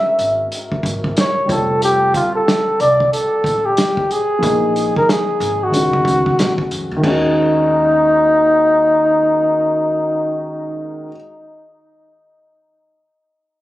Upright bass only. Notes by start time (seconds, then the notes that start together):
0.19 G#1
0.83 G#1
1.49 F1
2.80 C2
3.44 A1
4.43 A#1
5.40 G#1
5.73 C#2
6.05 C#2
6.39 A#1
6.71 F2
6.91 E2
7.03 D#2